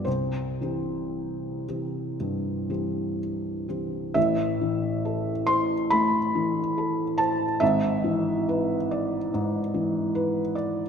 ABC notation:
X:1
M:4/4
L:1/8
Q:1/4=69
K:C
V:1 name="Felt piano"
c6 z2 | [K:Am] e3 c' b3 a | e6- e z |]
V:2 name="Felt piano"
C,, [E,CG]2 [E,CG] G,, [E,CG]2 [E,CG] | [K:Am] [A,,,A,,] E, A c A, E, A c | [^G,,,^G,,] E, B d G,, E, B d |]